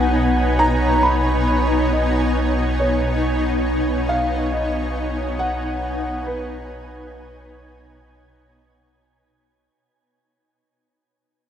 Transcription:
0, 0, Header, 1, 5, 480
1, 0, Start_track
1, 0, Tempo, 869565
1, 1533, Time_signature, 4, 2, 24, 8
1, 6344, End_track
2, 0, Start_track
2, 0, Title_t, "Synth texture"
2, 0, Program_c, 0, 99
2, 0, Note_on_c, 0, 80, 78
2, 5386, Note_off_c, 0, 80, 0
2, 6344, End_track
3, 0, Start_track
3, 0, Title_t, "Felt piano"
3, 0, Program_c, 1, 0
3, 0, Note_on_c, 1, 78, 90
3, 326, Note_on_c, 1, 82, 103
3, 343, Note_off_c, 1, 78, 0
3, 568, Note_on_c, 1, 83, 83
3, 577, Note_off_c, 1, 82, 0
3, 1028, Note_off_c, 1, 83, 0
3, 1061, Note_on_c, 1, 75, 78
3, 1544, Note_on_c, 1, 73, 71
3, 1551, Note_off_c, 1, 75, 0
3, 1997, Note_off_c, 1, 73, 0
3, 2258, Note_on_c, 1, 77, 105
3, 2497, Note_on_c, 1, 75, 86
3, 2502, Note_off_c, 1, 77, 0
3, 2976, Note_on_c, 1, 78, 110
3, 2989, Note_off_c, 1, 75, 0
3, 3459, Note_on_c, 1, 71, 85
3, 3469, Note_off_c, 1, 78, 0
3, 4874, Note_off_c, 1, 71, 0
3, 6344, End_track
4, 0, Start_track
4, 0, Title_t, "Ambient pad"
4, 0, Program_c, 2, 92
4, 0, Note_on_c, 2, 47, 66
4, 0, Note_on_c, 2, 59, 78
4, 0, Note_on_c, 2, 63, 89
4, 0, Note_on_c, 2, 71, 73
4, 0, Note_on_c, 2, 73, 70
4, 5365, Note_off_c, 2, 73, 0
4, 5367, Note_off_c, 2, 63, 0
4, 5370, Note_off_c, 2, 47, 0
4, 5372, Note_off_c, 2, 59, 0
4, 5374, Note_off_c, 2, 71, 0
4, 6344, End_track
5, 0, Start_track
5, 0, Title_t, "Sub bass"
5, 0, Program_c, 3, 38
5, 0, Note_on_c, 3, 35, 69
5, 5350, Note_off_c, 3, 35, 0
5, 6344, End_track
0, 0, End_of_file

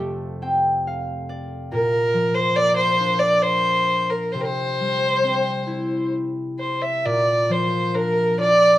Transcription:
0, 0, Header, 1, 3, 480
1, 0, Start_track
1, 0, Tempo, 864553
1, 952, Time_signature, 3, 2, 24, 8
1, 1913, Tempo, 892857
1, 4783, End_track
2, 0, Start_track
2, 0, Title_t, "Fiddle"
2, 0, Program_c, 0, 110
2, 960, Note_on_c, 0, 70, 89
2, 1304, Note_on_c, 0, 72, 86
2, 1312, Note_off_c, 0, 70, 0
2, 1422, Note_on_c, 0, 74, 98
2, 1431, Note_off_c, 0, 72, 0
2, 1532, Note_off_c, 0, 74, 0
2, 1535, Note_on_c, 0, 72, 92
2, 1775, Note_on_c, 0, 74, 84
2, 1783, Note_off_c, 0, 72, 0
2, 1898, Note_on_c, 0, 72, 90
2, 1907, Note_off_c, 0, 74, 0
2, 2265, Note_on_c, 0, 70, 70
2, 2273, Note_off_c, 0, 72, 0
2, 2385, Note_on_c, 0, 72, 70
2, 2393, Note_off_c, 0, 70, 0
2, 2432, Note_on_c, 0, 70, 55
2, 2440, Note_off_c, 0, 72, 0
2, 2452, Note_on_c, 0, 72, 91
2, 2460, Note_off_c, 0, 70, 0
2, 3345, Note_off_c, 0, 72, 0
2, 3605, Note_on_c, 0, 72, 61
2, 3728, Note_on_c, 0, 76, 58
2, 3736, Note_off_c, 0, 72, 0
2, 3856, Note_on_c, 0, 74, 74
2, 3864, Note_off_c, 0, 76, 0
2, 4100, Note_on_c, 0, 72, 72
2, 4108, Note_off_c, 0, 74, 0
2, 4334, Note_on_c, 0, 70, 80
2, 4343, Note_off_c, 0, 72, 0
2, 4567, Note_off_c, 0, 70, 0
2, 4577, Note_on_c, 0, 74, 87
2, 4783, Note_off_c, 0, 74, 0
2, 4783, End_track
3, 0, Start_track
3, 0, Title_t, "Harp"
3, 0, Program_c, 1, 46
3, 0, Note_on_c, 1, 41, 47
3, 0, Note_on_c, 1, 48, 44
3, 0, Note_on_c, 1, 57, 45
3, 0, Note_on_c, 1, 67, 46
3, 118, Note_off_c, 1, 67, 0
3, 233, Note_on_c, 1, 60, 47
3, 236, Note_on_c, 1, 79, 59
3, 484, Note_on_c, 1, 77, 54
3, 718, Note_on_c, 1, 74, 57
3, 954, Note_on_c, 1, 46, 51
3, 980, Note_off_c, 1, 41, 0
3, 980, Note_off_c, 1, 48, 0
3, 988, Note_off_c, 1, 57, 0
3, 1098, Note_off_c, 1, 79, 0
3, 1186, Note_on_c, 1, 53, 46
3, 1408, Note_off_c, 1, 77, 0
3, 1424, Note_on_c, 1, 58, 51
3, 1666, Note_on_c, 1, 62, 50
3, 1743, Note_off_c, 1, 74, 0
3, 1899, Note_off_c, 1, 60, 0
3, 2395, Note_on_c, 1, 48, 53
3, 2418, Note_off_c, 1, 46, 0
3, 2418, Note_off_c, 1, 53, 0
3, 2645, Note_on_c, 1, 55, 41
3, 2872, Note_on_c, 1, 60, 52
3, 3108, Note_on_c, 1, 64, 47
3, 3168, Note_off_c, 1, 58, 0
3, 3179, Note_off_c, 1, 62, 0
3, 3852, Note_on_c, 1, 46, 50
3, 3867, Note_off_c, 1, 48, 0
3, 3867, Note_off_c, 1, 55, 0
3, 4088, Note_on_c, 1, 53, 48
3, 4121, Note_off_c, 1, 64, 0
3, 4332, Note_on_c, 1, 62, 51
3, 4485, Note_off_c, 1, 60, 0
3, 4568, Note_on_c, 1, 65, 50
3, 4783, Note_off_c, 1, 46, 0
3, 4783, Note_off_c, 1, 53, 0
3, 4783, Note_off_c, 1, 62, 0
3, 4783, Note_off_c, 1, 65, 0
3, 4783, End_track
0, 0, End_of_file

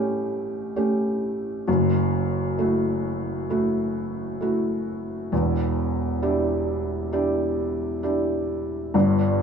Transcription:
0, 0, Header, 1, 2, 480
1, 0, Start_track
1, 0, Tempo, 907716
1, 886, Time_signature, 4, 2, 24, 8
1, 4983, End_track
2, 0, Start_track
2, 0, Title_t, "Felt piano"
2, 0, Program_c, 0, 0
2, 0, Control_c, 0, 64, 127
2, 0, Note_on_c, 0, 33, 68
2, 0, Note_on_c, 0, 45, 74
2, 0, Note_on_c, 0, 57, 50
2, 0, Note_on_c, 0, 61, 46
2, 0, Note_on_c, 0, 67, 55
2, 390, Note_off_c, 0, 57, 0
2, 390, Note_off_c, 0, 67, 0
2, 391, Note_off_c, 0, 61, 0
2, 403, Note_on_c, 0, 57, 45
2, 405, Note_on_c, 0, 61, 38
2, 406, Note_on_c, 0, 67, 49
2, 866, Note_off_c, 0, 33, 0
2, 866, Note_off_c, 0, 45, 0
2, 870, Note_off_c, 0, 57, 0
2, 871, Note_off_c, 0, 61, 0
2, 872, Note_off_c, 0, 67, 0
2, 887, Note_on_c, 0, 42, 72
2, 889, Note_on_c, 0, 30, 65
2, 893, Control_c, 0, 64, 0
2, 988, Control_c, 0, 64, 127
2, 1367, Note_on_c, 0, 57, 49
2, 1368, Note_on_c, 0, 64, 43
2, 1375, Note_on_c, 0, 66, 49
2, 1831, Note_off_c, 0, 57, 0
2, 1832, Note_off_c, 0, 64, 0
2, 1836, Note_off_c, 0, 66, 0
2, 1851, Note_on_c, 0, 57, 48
2, 1852, Note_on_c, 0, 64, 45
2, 1857, Note_on_c, 0, 66, 51
2, 2319, Note_off_c, 0, 57, 0
2, 2319, Note_off_c, 0, 64, 0
2, 2322, Note_off_c, 0, 66, 0
2, 2330, Note_on_c, 0, 57, 41
2, 2337, Note_on_c, 0, 64, 36
2, 2339, Note_on_c, 0, 66, 49
2, 2794, Note_off_c, 0, 42, 0
2, 2795, Note_off_c, 0, 30, 0
2, 2800, Note_off_c, 0, 57, 0
2, 2803, Note_off_c, 0, 64, 0
2, 2804, Note_off_c, 0, 66, 0
2, 2814, Note_on_c, 0, 40, 69
2, 2817, Note_on_c, 0, 28, 69
2, 2820, Control_c, 0, 64, 0
2, 2928, Control_c, 0, 64, 127
2, 3291, Note_on_c, 0, 62, 50
2, 3292, Note_on_c, 0, 64, 42
2, 3294, Note_on_c, 0, 67, 47
2, 3757, Note_off_c, 0, 62, 0
2, 3758, Note_off_c, 0, 64, 0
2, 3759, Note_off_c, 0, 67, 0
2, 3767, Note_on_c, 0, 64, 41
2, 3769, Note_on_c, 0, 62, 46
2, 3772, Note_on_c, 0, 67, 55
2, 4234, Note_off_c, 0, 62, 0
2, 4234, Note_off_c, 0, 64, 0
2, 4236, Note_off_c, 0, 67, 0
2, 4247, Note_on_c, 0, 62, 43
2, 4250, Note_on_c, 0, 64, 39
2, 4251, Note_on_c, 0, 67, 46
2, 4708, Note_off_c, 0, 40, 0
2, 4709, Note_off_c, 0, 28, 0
2, 4712, Note_off_c, 0, 62, 0
2, 4714, Note_off_c, 0, 64, 0
2, 4714, Note_off_c, 0, 67, 0
2, 4729, Note_on_c, 0, 43, 73
2, 4731, Note_on_c, 0, 31, 68
2, 4736, Control_c, 0, 64, 0
2, 4845, Control_c, 0, 64, 127
2, 4983, Note_off_c, 0, 31, 0
2, 4983, Note_off_c, 0, 43, 0
2, 4983, End_track
0, 0, End_of_file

